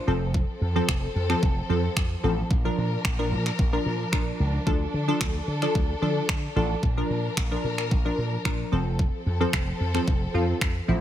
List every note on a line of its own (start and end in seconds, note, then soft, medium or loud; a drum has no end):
0.00 8.68 F3 medium
0.07 0.43 F1 medium
0.07 0.61 F3 medium
0.07 2.48 C4 medium
0.07 0.62 C4 medium
0.07 2.48 A4 medium
0.07 0.62 A4 loud
0.34 kick loud
0.61 0.79 F2 medium
0.75 1.17 F3 loud
0.75 1.17 C4 medium
0.75 1.17 A4 loud
0.89 1.06 F1 loud
0.89 finger snap loud
0.89 kick loud
1.15 1.33 F2 loud
1.30 1.61 F3 medium
1.30 1.61 C4 medium
1.30 1.61 A4 loud
1.30 finger snap medium
1.43 1.60 F1 loud
1.43 kick loud
1.69 1.87 F2 medium
1.69 2.12 F3 medium
1.69 2.12 C4 medium
1.69 2.12 A4 medium
1.96 2.14 F2 loud
1.96 finger snap loud
1.96 kick loud
2.23 2.41 A1 medium
2.23 2.51 F3 medium
2.23 2.51 C4 medium
2.23 2.51 A4 loud
2.50 2.68 A#1 loud
2.50 8.68 D4 medium
2.50 4.65 A#4 medium
2.50 kick loud
2.65 3.06 F3 medium
2.65 3.06 D4 medium
2.65 3.06 A#4 loud
2.78 2.95 A#2 medium
3.05 3.33 A#1 loud
3.05 finger snap loud
3.05 kick loud
3.19 3.60 F3 medium
3.19 3.60 D4 medium
3.19 3.60 A#4 loud
3.32 3.49 A#2 loud
3.46 finger snap medium
3.59 3.77 A#1 loud
3.59 kick loud
3.73 4.04 F3 medium
3.73 4.04 D4 medium
3.73 4.04 A#4 loud
3.86 4.03 A#2 loud
4.12 4.30 A#2 loud
4.12 4.55 F3 loud
4.12 4.55 D4 medium
4.12 4.55 A#4 loud
4.12 finger snap loud
4.12 kick loud
4.40 4.57 C#2 medium
4.66 4.84 D2 loud
4.66 4.98 F3 medium
4.66 4.98 D4 medium
4.66 4.99 A4 loud
4.66 6.81 A4 medium
4.66 kick loud
4.94 5.11 D3 medium
5.08 5.49 F3 medium
5.08 5.49 D4 medium
5.08 5.50 A4 loud
5.21 5.38 D2 medium
5.21 finger snap loud
5.21 kick loud
5.48 5.65 D3 loud
5.62 5.93 F3 medium
5.62 5.94 D4 medium
5.62 5.94 A4 loud
5.62 finger snap medium
5.75 5.93 D2 loud
5.75 kick loud
6.02 6.20 D3 loud
6.02 6.45 F3 medium
6.02 6.45 D4 medium
6.02 6.45 A4 medium
6.29 6.47 D3 loud
6.29 finger snap loud
6.29 kick loud
6.56 6.74 A1 loud
6.56 6.83 F3 medium
6.56 6.83 D4 medium
6.56 6.83 A4 loud
6.83 7.01 A#1 loud
6.83 8.70 A#4 medium
6.83 kick loud
6.97 7.39 F3 medium
6.97 7.39 D4 medium
6.97 7.39 A#4 loud
7.10 7.28 A#2 medium
7.37 7.55 A#1 loud
7.37 finger snap loud
7.37 kick loud
7.51 7.93 F3 medium
7.51 7.93 D4 medium
7.51 7.93 A#4 loud
7.64 7.93 A#2 loud
7.78 finger snap medium
7.91 8.09 A#1 loud
7.91 kick loud
8.05 8.36 F3 medium
8.05 8.37 D4 medium
8.05 8.37 A#4 loud
8.18 8.36 A#2 medium
8.45 8.63 A#2 medium
8.45 8.71 F3 loud
8.45 8.72 D4 medium
8.45 8.72 A#4 loud
8.45 finger snap loud
8.45 kick loud
8.72 9.07 F1 medium
8.72 9.26 F3 medium
8.72 11.01 F3 medium
8.72 9.26 C4 medium
8.72 11.01 C4 medium
8.72 11.01 A4 medium
8.72 9.26 A4 loud
8.99 kick loud
9.26 9.44 F2 loud
9.40 9.82 F3 loud
9.40 9.82 C4 medium
9.40 9.82 A4 loud
9.53 9.71 F1 loud
9.53 finger snap loud
9.53 kick loud
9.80 9.98 F2 loud
9.94 10.26 F3 medium
9.94 10.26 C4 medium
9.94 10.26 A4 medium
9.94 finger snap medium
10.08 10.25 F1 loud
10.08 kick loud
10.34 10.52 F2 medium
10.34 10.77 F3 medium
10.34 10.77 C4 medium
10.34 10.77 F4 medium
10.61 10.79 F2 loud
10.61 finger snap loud
10.61 kick loud
10.88 11.01 A1 medium
10.88 11.01 F3 medium
10.88 11.01 C4 medium
10.88 11.01 E4 loud